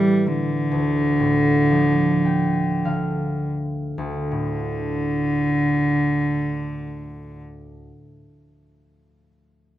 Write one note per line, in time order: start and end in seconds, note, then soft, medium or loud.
0.00 0.76 A2 soft
0.00 0.76 E3 soft
0.00 0.29 G3 medium
0.28 3.49 D3 medium
0.72 3.97 D2 soft
1.20 2.90 A2 soft
1.71 2.90 F3 soft
2.25 3.80 G5 soft
2.85 4.19 D3 soft
2.85 4.52 F5 soft
3.98 7.88 D2 soft
4.15 7.41 D3 medium
4.31 8.21 A2 soft